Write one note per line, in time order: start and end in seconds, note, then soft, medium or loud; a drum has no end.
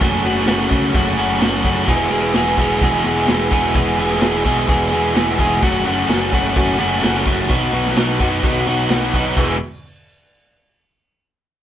0.00 0.24 F#1 loud
0.00 0.23 F#2 loud
0.00 0.23 C#3 loud
0.00 0.24 F#3 loud
0.00 0.24 A3 loud
0.00 0.25 C#4 loud
0.00 0.25 F#4 loud
0.00 1.82 A4 medium
0.00 1.83 C#5 medium
0.00 1.83 F#5 medium
0.00 kick loud
0.00 open hi-hat medium
0.24 0.47 F#1 loud
0.24 0.44 F#2 medium
0.24 0.45 C#3 medium
0.24 0.45 F#3 medium
0.24 0.46 A3 loud
0.24 0.46 C#4 loud
0.24 0.46 F#4 loud
0.37 snare soft
0.45 0.70 F#1 medium
0.45 0.68 F#2 medium
0.45 0.69 C#3 medium
0.45 0.69 F#3 medium
0.45 0.70 A3 medium
0.45 0.70 C#4 medium
0.45 0.70 F#4 medium
0.45 snare loud
0.45 clap loud
0.45 open hi-hat medium
0.69 0.94 C#2 medium
0.69 0.92 F#2 medium
0.69 0.92 C#3 loud
0.69 0.93 F#3 loud
0.69 0.93 A3 loud
0.69 0.94 C#4 loud
0.69 0.94 F#4 loud
0.69 kick medium
0.69 clap medium
0.93 1.17 F#1 loud
0.93 1.15 F#2 medium
0.93 1.15 C#3 medium
0.93 1.17 F#3 medium
0.93 1.17 A3 loud
0.93 1.17 C#4 loud
0.93 1.17 F#4 loud
0.93 kick loud
0.93 open hi-hat medium
1.16 1.40 F#1 medium
1.16 1.38 F#2 loud
1.16 1.39 C#3 medium
1.16 1.39 F#3 loud
1.16 1.39 A3 loud
1.16 1.40 C#4 loud
1.16 1.40 F#4 loud
1.39 1.64 F#1 loud
1.39 1.62 F#2 medium
1.39 1.63 C#3 medium
1.39 1.63 F#3 medium
1.39 1.64 A3 medium
1.39 1.64 C#4 loud
1.39 1.64 F#4 loud
1.39 snare loud
1.39 clap loud
1.39 open hi-hat medium
1.64 1.87 F#1 medium
1.64 1.86 F#2 medium
1.64 1.86 C#3 medium
1.64 1.86 F#3 loud
1.64 1.87 A3 loud
1.64 1.87 C#4 loud
1.64 1.87 F#4 loud
1.64 kick medium
1.86 2.09 E1 loud
1.86 2.09 E2 loud
1.86 2.09 B2 loud
1.86 2.10 E3 loud
1.86 2.10 G#3 loud
1.86 2.11 B3 loud
1.86 2.11 G#4 loud
1.86 5.58 G#4 medium
1.86 5.59 B4 medium
1.86 5.13 E5 medium
1.86 kick loud
1.86 crash loud
2.09 2.33 E1 medium
2.09 2.33 E2 medium
2.09 2.33 B2 medium
2.09 2.34 E3 medium
2.09 2.35 G#3 loud
2.09 2.35 B3 loud
2.09 2.35 G#4 loud
2.33 2.57 E1 loud
2.33 2.57 E2 medium
2.33 2.56 B2 medium
2.33 2.58 E3 medium
2.33 2.58 G#3 medium
2.33 2.59 B3 loud
2.33 2.59 G#4 loud
2.33 snare loud
2.33 clap loud
2.33 open hi-hat medium
2.57 2.80 E1 medium
2.57 2.80 E2 loud
2.57 2.81 B2 loud
2.57 2.81 E3 loud
2.57 2.82 G#3 loud
2.57 2.82 B3 loud
2.57 2.83 G#4 loud
2.57 kick medium
2.57 clap medium
2.81 3.04 E1 loud
2.81 3.04 E2 medium
2.81 3.04 B2 medium
2.81 3.04 E3 medium
2.81 3.05 G#3 medium
2.81 3.06 B3 medium
2.81 3.06 G#4 medium
2.81 kick loud
2.81 open hi-hat medium
3.04 3.27 E1 medium
3.04 3.27 E2 loud
3.04 3.27 B2 loud
3.04 3.28 E3 loud
3.04 3.28 G#3 loud
3.04 3.29 B3 loud
3.04 3.28 G#4 loud
3.27 3.73 E1 loud
3.27 3.50 E2 medium
3.27 3.51 B2 medium
3.27 3.51 E3 loud
3.27 3.52 G#3 loud
3.27 3.52 B3 medium
3.27 3.52 G#4 loud
3.27 snare loud
3.27 clap loud
3.27 open hi-hat medium
3.51 3.73 E2 medium
3.51 3.73 B2 loud
3.51 3.74 E3 loud
3.51 3.74 G#3 medium
3.51 3.75 B3 loud
3.51 3.75 G#4 loud
3.51 kick medium
3.74 3.96 E1 loud
3.74 3.97 E2 loud
3.74 3.97 B2 loud
3.74 3.98 E3 loud
3.74 3.98 G#3 loud
3.74 3.99 B3 loud
3.74 3.99 G#4 loud
3.74 kick loud
3.74 open hi-hat medium
3.97 4.20 E1 medium
3.97 4.19 E2 medium
3.97 4.20 B2 loud
3.97 4.20 E3 loud
3.97 4.21 G#3 medium
3.97 4.21 B3 loud
3.97 4.21 G#4 loud
4.10 snare soft
4.20 4.44 E1 loud
4.20 4.42 E2 medium
4.20 4.43 B2 medium
4.20 4.44 E3 medium
4.20 4.44 G#3 loud
4.20 4.44 B3 loud
4.20 4.45 G#4 loud
4.20 snare loud
4.20 clap loud
4.20 open hi-hat medium
4.43 4.68 B1 medium
4.43 4.66 E2 loud
4.43 4.67 B2 loud
4.43 4.67 E3 loud
4.43 4.67 G#3 loud
4.43 4.68 B3 loud
4.43 4.68 G#4 loud
4.43 kick medium
4.67 4.91 E1 loud
4.67 4.90 E2 medium
4.67 4.90 B2 medium
4.67 4.91 E3 medium
4.67 4.92 G#3 loud
4.67 4.92 B3 loud
4.67 4.92 G#4 medium
4.67 kick loud
4.67 open hi-hat medium
4.90 5.14 E1 medium
4.90 5.14 E2 medium
4.90 5.15 B2 loud
4.90 5.15 E3 medium
4.90 5.16 G#3 medium
4.90 5.16 B3 loud
4.90 5.17 G#4 loud
4.90 5.13 B5 medium
5.14 5.38 E1 loud
5.14 5.36 E2 medium
5.14 5.37 B2 medium
5.14 5.38 E3 medium
5.14 5.38 G#3 medium
5.14 5.38 B3 medium
5.14 5.39 G#4 loud
5.14 5.58 E5 medium
5.14 snare loud
5.14 clap loud
5.14 open hi-hat medium
5.38 5.61 E1 medium
5.38 5.60 E2 medium
5.38 5.60 B2 medium
5.38 5.61 E3 loud
5.38 5.61 G#3 loud
5.38 5.61 B3 loud
5.38 5.61 G#4 loud
5.38 kick medium
5.62 5.85 F#1 loud
5.62 5.83 F#2 loud
5.62 5.84 C#3 loud
5.62 5.86 F#3 loud
5.62 5.85 A3 loud
5.62 5.86 C#4 loud
5.62 5.87 F#4 loud
5.62 7.46 A4 medium
5.62 7.46 C#5 medium
5.62 7.46 F#5 medium
5.62 kick loud
5.62 open hi-hat medium
5.84 6.07 F#1 medium
5.84 6.08 F#2 medium
5.84 6.08 C#3 medium
5.84 6.09 F#3 loud
5.84 6.09 A3 loud
5.84 6.09 C#4 loud
5.84 6.10 F#4 loud
6.07 6.31 F#1 loud
6.07 6.30 F#2 medium
6.07 6.31 C#3 medium
6.07 6.33 F#3 medium
6.07 6.32 A3 medium
6.07 6.32 C#4 loud
6.07 6.33 F#4 loud
6.07 snare loud
6.07 clap loud
6.07 open hi-hat medium
6.31 6.55 F#1 medium
6.31 6.54 F#2 loud
6.31 6.54 C#3 medium
6.31 6.55 F#3 loud
6.31 6.56 A3 loud
6.31 6.56 C#4 loud
6.31 6.56 F#4 loud
6.31 kick medium
6.31 clap medium
6.55 6.78 F#1 loud
6.55 6.76 F#2 medium
6.55 6.77 C#3 medium
6.55 6.77 F#3 loud
6.55 6.78 A3 medium
6.55 6.78 C#4 loud
6.55 6.78 F#4 loud
6.55 kick loud
6.55 open hi-hat medium
6.78 7.02 F#1 medium
6.78 7.01 F#2 medium
6.78 7.01 C#3 loud
6.78 7.01 F#3 loud
6.78 7.02 A3 loud
6.78 7.03 C#4 loud
6.78 7.03 F#4 loud
7.02 7.48 F#1 loud
7.02 7.24 F#2 loud
7.02 7.25 C#3 medium
7.02 7.26 F#3 loud
7.02 7.26 A3 loud
7.02 7.26 C#4 loud
7.02 7.27 F#4 loud
7.02 snare loud
7.02 clap loud
7.02 open hi-hat medium
7.25 7.48 F#2 loud
7.25 7.48 C#3 loud
7.25 7.47 F#3 loud
7.25 7.48 A3 loud
7.25 7.49 C#4 loud
7.25 7.49 F#4 loud
7.25 kick medium
7.48 7.72 B1 loud
7.48 7.71 B2 loud
7.48 7.72 F#3 loud
7.48 7.72 B3 loud
7.48 7.73 D#4 loud
7.48 7.73 F#4 loud
7.48 9.34 B4 medium
7.48 9.34 D#5 medium
7.48 9.34 F#5 medium
7.48 kick loud
7.48 open hi-hat medium
7.72 7.95 B1 medium
7.72 7.95 B2 loud
7.72 7.96 F#3 medium
7.72 7.97 B3 medium
7.72 7.97 D#4 medium
7.72 7.97 F#4 loud
7.86 snare soft
7.96 8.19 B1 medium
7.96 8.18 B2 medium
7.96 8.18 F#3 medium
7.96 8.19 B3 medium
7.96 8.20 D#4 loud
7.96 8.19 F#4 loud
7.96 snare loud
7.96 clap loud
7.96 open hi-hat medium
8.19 8.42 F#2 loud
8.19 8.42 B2 loud
8.19 8.42 F#3 loud
8.19 8.43 B3 loud
8.19 8.43 D#4 loud
8.19 8.44 F#4 loud
8.19 kick medium
8.43 8.66 B1 medium
8.43 8.66 B2 medium
8.43 8.66 F#3 medium
8.43 8.67 B3 medium
8.43 8.68 D#4 loud
8.43 8.68 F#4 loud
8.43 kick loud
8.43 open hi-hat medium
8.67 8.89 B1 medium
8.67 8.89 B2 loud
8.67 8.90 F#3 medium
8.67 8.90 B3 loud
8.67 8.91 D#4 loud
8.67 8.91 F#4 loud
8.89 9.12 B1 loud
8.89 9.13 B2 medium
8.89 9.13 F#3 medium
8.89 9.14 B3 loud
8.89 9.14 D#4 loud
8.89 9.15 F#4 loud
8.89 snare loud
8.89 clap loud
8.89 open hi-hat medium
9.14 9.36 B1 loud
9.14 9.36 B2 medium
9.14 9.36 F#3 loud
9.14 9.36 B3 loud
9.14 9.36 D#4 loud
9.14 9.36 F#4 loud
9.14 kick medium
9.36 9.59 E1 loud
9.36 9.55 E2 loud
9.36 9.56 B2 loud
9.36 9.56 E3 loud
9.36 9.56 G#3 loud
9.36 9.56 B3 loud
9.36 9.56 E4 loud
9.36 9.58 B4 medium
9.36 9.58 E5 medium
9.36 9.59 G#5 loud
9.36 kick loud
9.36 clap medium
9.36 crash medium